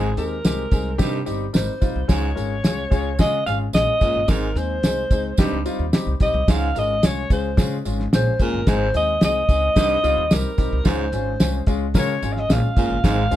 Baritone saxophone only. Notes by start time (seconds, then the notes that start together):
Already playing: G#2
0.99 G2
2.08 G#2
4.01 A#2
4.29 G#2
5.39 G2
6.48 G#2
8.40 A#2
8.67 G#2
9.76 G2
10.85 G#2
12.77 A#2
13.04 G#2